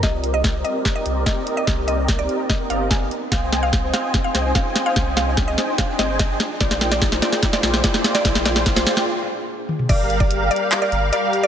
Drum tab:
CC |--------------------------------|--------------------------------|--------------------------------|--------------------------------|
HH |x---x---x---x---x---x---x---x---|x---x---x---x---x---x---x---x---|x---x---x---x---x---x---x---x---|x---x---x---x---x---x---x---x---|
CP |--------------------------------|--------------------------------|--------------------------------|--------------------------------|
SD |o-------o-------o-------o-------|o-------o-------o-------o-------|o---o---o---o---o---o---o---o---|o---o---o---o---o---o---o---o---|
T1 |--------------------------------|--------------------------------|--------------------------------|--------------------------------|
T2 |--------------------------------|--------------------------------|--------------------------------|--------------------------------|
BD |o-------o-------o-------o-------|o-------o-------o-------o-------|o-------o-------o-------o-------|o-------o-------o-------o-------|

CC |--------------------------------|--------------------------------|x-------------------------------|
HH |x---x---x---x---x---x---x---x---|x---x---x---x-------------------|x---x---x---xx--x---x---x---x---|
CP |--------------------------------|--------------------------------|----------------x---------------|
SD |o-o-o-o-o-o-o-o-o-o-o-o-o-o-o-o-|o-o-o-o-o-o-o-o-----------------|--------------------------------|
T1 |--------------------------------|----------------------------o---|--------------------------------|
T2 |--------------------------------|------------------------------o-|--------------------------------|
BD |o-------o-------o-------o-------|o-------o-----------------------|o-----o-------------------------|